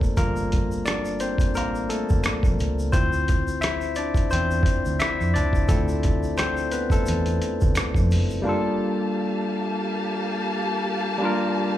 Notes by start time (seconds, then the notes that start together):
Already playing: F#1 A3 A#3 C4 D4 A4 A#4 C5 D5
0.01 kick, shaker
0.17 G1 G3 A#3 F4 A#4, kick, closed hi-hat, shaker
0.36 shaker
0.52 kick, closed hi-hat, shaker
0.72 shaker
0.85 D4 D5, finger snap, cross-stick, closed hi-hat, shaker
1.05 shaker
1.20 C4 C5, closed hi-hat, shaker
1.38 kick, closed hi-hat, shaker
1.55 A1 A#3 A#4, closed hi-hat, shaker
1.75 shaker
1.89 A3 A4, closed hi-hat, shaker
2.09 G1, kick, shaker
2.24 finger snap, cross-stick, closed hi-hat, shaker
2.43 A#1, kick, shaker
2.60 C#2, closed hi-hat, shaker
2.79 shaker
2.92 D2 C4 E4 F4 C5, kick, closed hi-hat, shaker
3.13 shaker
3.28 kick, closed hi-hat, shaker
3.48 shaker
3.61 E4 E5, finger snap, cross-stick, closed hi-hat, shaker
3.81 shaker
3.95 D4 D5, closed hi-hat, shaker
4.14 kick, closed hi-hat, shaker
4.31 E2 C4 C5, closed hi-hat, shaker
4.51 shaker
4.63 kick, closed hi-hat, shaker
4.86 D2, shaker
4.99 E4 E5, finger snap, cross-stick, closed hi-hat, shaker
5.21 F2, shaker
5.34 C#2 D4 D5, closed hi-hat, shaker
5.53 kick, shaker
5.68 D2 A3 C4 E4 F4 A4, kick, closed hi-hat, shaker
5.88 shaker
6.03 kick, closed hi-hat, shaker
6.23 shaker
6.38 C4 C5, finger snap, cross-stick, closed hi-hat, shaker
6.57 shaker
6.72 B3 B4, closed hi-hat, shaker
6.90 A3 A4, kick, closed hi-hat, shaker
7.06 E2, closed hi-hat, shaker
7.26 closed hi-hat, shaker
7.42 closed hi-hat, shaker
7.61 D2, kick, shaker
7.75 finger snap, cross-stick, closed hi-hat, shaker
7.94 F2, kick, shaker
8.11 F#1, open hi-hat, shaker
8.30 shaker
8.42 G3 A#3 D4 G4 F5 A5
8.47 F4 A4
11.18 G3 A#3 D4
11.23 F4 A#4